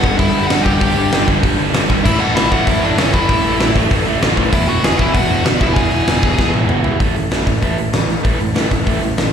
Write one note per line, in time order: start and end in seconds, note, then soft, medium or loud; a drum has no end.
0.00 0.15 G1 loud
0.00 2.04 D4 loud
0.00 2.08 D4 loud
0.00 0.17 F#4 medium
0.00 0.16 F#5 loud
0.00 kick medium
0.04 0.17 G2 medium
0.04 0.18 D3 medium
0.04 0.18 G3 loud
0.18 0.30 G1 loud
0.18 0.34 G2 loud
0.18 0.33 D3 loud
0.18 0.32 G3 loud
0.18 0.48 E4 medium
0.18 0.47 E5 medium
0.18 kick loud
0.18 open hi-hat medium
0.34 0.46 G1 loud
0.34 0.49 G2 medium
0.34 0.50 D3 medium
0.34 0.50 G3 medium
0.47 0.61 G1 medium
0.47 0.65 G2 loud
0.47 0.64 F#4 medium
0.47 0.63 F#5 loud
0.47 snare loud
0.47 open hi-hat medium
0.51 0.65 D3 loud
0.51 0.64 G3 loud
0.63 0.77 G1 medium
0.63 0.79 G2 medium
0.63 0.79 D3 medium
0.63 0.80 G3 medium
0.63 1.23 G4 medium
0.63 1.26 G5 loud
0.63 kick medium
0.80 0.92 G1 loud
0.80 0.96 G2 loud
0.80 0.95 D3 loud
0.80 0.95 G3 loud
0.80 kick loud
0.80 open hi-hat medium
0.96 1.07 G1 loud
0.96 1.11 G2 medium
0.96 1.11 D3 medium
0.96 1.12 G3 loud
1.12 1.23 G1 medium
1.12 1.27 G2 medium
1.12 1.26 D3 loud
1.12 1.25 G3 medium
1.12 snare loud
1.12 open hi-hat medium
1.27 1.39 G1 medium
1.27 1.41 G2 medium
1.27 1.42 D3 medium
1.27 1.43 G3 loud
1.27 kick medium
1.42 1.54 G1 loud
1.42 1.58 G2 loud
1.42 1.57 D3 loud
1.42 1.56 G3 loud
1.42 kick loud
1.42 open hi-hat medium
1.57 1.70 G1 medium
1.57 1.72 G2 medium
1.57 1.72 D3 medium
1.57 1.72 G3 loud
1.73 1.85 G1 medium
1.73 1.88 G2 loud
1.73 1.88 D3 loud
1.73 1.87 G3 loud
1.73 snare loud
1.73 open hi-hat medium
1.88 2.01 G#1 medium
1.88 2.04 G2 medium
1.88 2.03 D3 medium
1.88 2.03 G3 medium
1.88 kick loud
2.04 2.16 A1 loud
2.04 2.19 A2 medium
2.04 2.19 E3 loud
2.04 2.19 A3 loud
2.04 2.20 E4 medium
2.04 2.20 E5 loud
2.04 kick loud
2.04 crash loud
2.09 2.51 A3 loud
2.19 2.32 A1 medium
2.19 2.35 A2 medium
2.19 2.36 E3 medium
2.19 2.37 A3 medium
2.19 2.35 F#4 medium
2.19 2.35 F#5 medium
2.35 2.48 A1 medium
2.35 2.52 A2 medium
2.35 2.51 E3 loud
2.35 2.51 A3 loud
2.35 2.50 E4 medium
2.35 2.51 E5 loud
2.35 snare loud
2.35 open hi-hat medium
2.51 2.63 A1 loud
2.51 2.65 A2 medium
2.51 2.67 E3 medium
2.51 2.66 A3 loud
2.51 2.66 F#4 medium
2.51 2.67 F#5 loud
2.51 kick medium
2.66 2.78 A1 loud
2.66 2.83 A2 loud
2.66 2.83 E3 loud
2.66 2.82 A3 loud
2.66 2.82 E4 medium
2.66 2.83 E5 loud
2.66 kick loud
2.66 open hi-hat medium
2.83 2.94 A1 medium
2.83 2.97 A2 medium
2.83 2.98 E3 medium
2.83 2.98 A3 loud
2.83 2.98 D4 medium
2.83 2.99 D5 medium
2.98 3.09 A1 loud
2.98 3.13 A2 medium
2.98 3.14 E3 loud
2.98 3.12 A3 loud
2.98 3.13 C#4 medium
2.98 3.15 C#5 medium
2.98 snare loud
2.98 open hi-hat medium
3.14 3.25 A1 loud
3.14 3.27 A2 medium
3.14 3.29 E3 medium
3.14 3.28 A3 loud
3.14 3.71 E4 medium
3.14 3.76 E5 medium
3.14 kick medium
3.29 3.40 A1 loud
3.29 3.44 A2 medium
3.29 3.44 E3 loud
3.29 3.43 A3 loud
3.29 kick loud
3.29 open hi-hat medium
3.44 3.56 A1 loud
3.44 3.58 A2 medium
3.44 3.60 E3 loud
3.44 3.60 A3 medium
3.60 3.71 A1 medium
3.60 3.76 A2 medium
3.60 3.76 E3 loud
3.60 3.74 A3 loud
3.60 snare loud
3.60 open hi-hat medium
3.76 3.87 A1 loud
3.76 3.89 A2 medium
3.76 3.91 E3 medium
3.76 3.90 A3 loud
3.76 kick medium
3.90 4.02 A1 loud
3.90 4.07 A2 loud
3.90 4.07 E3 loud
3.90 4.06 A3 loud
3.90 kick loud
3.90 open hi-hat medium
4.07 4.18 A1 loud
4.07 4.20 A2 medium
4.07 4.21 E3 loud
4.07 4.21 A3 medium
4.21 4.33 A1 loud
4.21 4.37 A2 loud
4.21 4.37 E3 loud
4.21 4.36 A3 loud
4.21 snare loud
4.21 open hi-hat medium
4.37 4.49 A1 medium
4.37 4.52 A2 medium
4.37 4.54 E3 medium
4.37 4.52 A3 loud
4.37 kick medium
4.53 4.64 E1 loud
4.53 4.69 E2 loud
4.53 4.68 B2 loud
4.53 4.68 E3 loud
4.53 4.68 E4 medium
4.53 4.67 E5 loud
4.53 kick loud
4.53 open hi-hat medium
4.67 4.79 E1 medium
4.67 4.83 E2 medium
4.67 4.83 B2 medium
4.67 4.84 E3 loud
4.67 4.83 F#4 medium
4.67 4.84 F#5 loud
4.84 4.95 E1 loud
4.84 5.00 E2 medium
4.84 4.99 B2 loud
4.84 4.99 E3 loud
4.84 4.98 G#4 medium
4.84 4.99 G#5 loud
4.84 snare loud
4.84 open hi-hat medium
4.98 5.11 E1 loud
4.98 5.13 E2 medium
4.98 5.14 B2 medium
4.98 5.15 E3 loud
4.98 5.13 E4 medium
4.98 5.14 E5 medium
4.98 kick medium
5.14 5.26 E1 loud
5.14 5.30 E2 loud
5.14 5.29 B2 loud
5.14 5.29 E3 loud
5.14 5.44 F#4 medium
5.14 5.43 F#5 loud
5.14 kick loud
5.14 open hi-hat medium
5.29 5.41 E1 medium
5.29 5.44 E2 medium
5.29 5.44 B2 loud
5.29 5.45 E3 medium
5.45 5.56 E1 medium
5.45 5.60 E2 medium
5.45 5.60 B2 loud
5.45 5.60 E3 loud
5.45 snare loud
5.45 open hi-hat medium
5.57 5.72 E1 medium
5.57 5.74 E2 medium
5.57 5.75 B2 medium
5.57 5.75 E3 loud
5.57 5.61 D5 medium
5.57 5.77 E5 medium
5.57 kick medium
5.63 5.76 E4 medium
5.74 5.87 E1 loud
5.74 5.91 E2 loud
5.74 5.91 B2 loud
5.74 5.90 E3 loud
5.74 5.91 G#4 medium
5.74 5.91 G#5 loud
5.74 kick loud
5.74 open hi-hat medium
5.91 6.03 E1 medium
5.91 6.06 E2 medium
5.91 6.07 B2 medium
5.91 6.08 E3 loud
5.91 6.51 G#4 medium
5.91 6.50 G#5 medium
6.07 6.18 E1 loud
6.07 6.22 E2 loud
6.07 6.22 B2 medium
6.07 6.21 E3 loud
6.07 snare loud
6.07 open hi-hat medium
6.23 6.34 E1 medium
6.23 6.36 E2 medium
6.23 6.37 B2 medium
6.23 6.38 E3 medium
6.23 kick medium
6.37 6.49 E1 medium
6.37 6.53 E2 loud
6.37 6.52 B2 loud
6.37 6.52 E3 loud
6.37 kick loud
6.37 snare medium
6.53 6.65 E1 medium
6.53 6.67 E2 medium
6.53 6.68 B2 loud
6.53 6.68 E3 loud
6.53 high tom medium
6.69 6.80 E1 medium
6.69 6.84 E2 medium
6.69 6.84 B2 loud
6.69 6.82 E3 loud
6.69 mid tom loud
6.84 6.96 E1 medium
6.84 6.99 E2 medium
6.84 6.98 B2 medium
6.84 6.98 E3 loud
6.84 floor tom medium
6.99 7.10 A1 medium
6.99 7.14 A2 medium
6.99 7.14 E3 medium
6.99 7.15 A3 medium
6.99 kick medium
6.99 open hi-hat medium
7.15 7.25 A1 medium
7.15 7.29 A2 medium
7.15 7.30 E3 medium
7.15 open hi-hat soft
7.31 7.42 A1 medium
7.31 7.46 A2 medium
7.31 7.46 E3 medium
7.31 7.46 A3 medium
7.31 snare medium
7.31 open hi-hat medium
7.47 7.57 A1 medium
7.47 7.60 A2 medium
7.47 7.60 E3 medium
7.47 kick medium
7.47 open hi-hat soft
7.62 7.73 A1 medium
7.62 7.76 A2 medium
7.62 7.77 E3 medium
7.62 7.77 A3 medium
7.62 kick medium
7.62 open hi-hat medium
7.77 7.88 A1 medium
7.77 7.92 A2 medium
7.77 7.92 E3 medium
7.77 open hi-hat soft
7.93 8.14 A1 medium
7.93 8.07 A2 medium
7.93 8.08 E3 medium
7.93 snare loud
7.93 open hi-hat medium
8.08 8.22 A2 medium
8.08 8.23 E3 medium
8.08 open hi-hat soft
8.23 8.35 A1 medium
8.23 8.39 A2 medium
8.23 8.39 E3 medium
8.23 8.39 A3 medium
8.23 kick medium
8.23 open hi-hat medium
8.40 8.51 A1 medium
8.40 8.53 A2 medium
8.40 8.54 E3 medium
8.40 open hi-hat medium
8.55 8.66 A1 medium
8.55 8.68 A2 medium
8.55 8.69 E3 medium
8.55 8.70 A3 medium
8.55 snare medium
8.55 open hi-hat medium
8.70 8.81 A1 medium
8.70 8.83 A2 medium
8.70 8.83 E3 medium
8.70 kick medium
8.70 open hi-hat medium
8.84 8.97 A1 medium
8.84 9.00 A2 medium
8.84 9.00 E3 medium
8.84 9.01 A3 medium
8.84 kick medium
8.84 open hi-hat medium
9.01 9.13 A1 medium
9.01 9.16 A2 medium
9.01 9.16 E3 medium
9.01 open hi-hat medium
9.17 9.33 A1 medium
9.17 9.32 A2 medium
9.17 9.32 E3 medium
9.17 snare loud
9.17 open hi-hat medium